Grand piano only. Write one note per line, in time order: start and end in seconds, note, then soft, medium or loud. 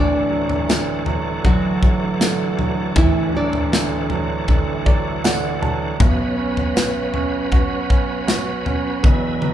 0.00 2.92 D1 medium
0.00 2.92 D2 medium
0.30 1.04 F#3 medium
0.69 1.43 D3 medium
1.06 1.81 F#3 medium
1.44 2.19 D3 medium
1.83 2.57 F#3 medium
2.21 3.68 D3 medium
2.58 3.33 F#3 soft
2.96 5.96 D1 medium
2.96 5.96 D2 medium
3.34 4.09 F#3 medium
3.73 4.47 D3 medium
4.10 4.84 F#3 medium
4.48 5.23 D3 medium
4.86 5.61 F#3 medium
4.86 5.21 D5 medium
5.24 5.98 D3 medium
5.24 5.60 F#5 medium
5.62 5.99 F#3 medium
5.62 5.97 A5 medium
6.00 9.00 B1 medium
6.00 9.00 B2 medium
6.38 7.13 C#4 medium
6.76 8.24 B3 medium
7.14 7.88 C#4 medium
7.52 8.26 F#4 medium
7.90 8.64 C#4 medium
8.28 9.01 F#4 medium
8.65 9.02 C#4 medium
9.03 9.54 E1 medium
9.03 9.54 E2 medium
9.41 9.54 F#3 soft